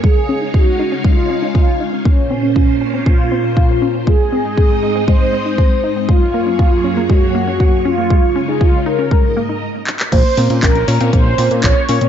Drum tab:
CC |----------------|----------------|----------------|----------------|
HH |----------------|----------------|----------------|----------------|
CP |----------------|----------------|----------------|----------------|
BD |o---o---o---o---|o---o---o---o---|o---o---o---o---|o---o---o---o---|

CC |----------------|x---------------|
HH |----------------|x-oxxxoxx-oxx-ox|
CP |--------------xx|----x-------x---|
BD |o---o---o-------|o---o---o---o---|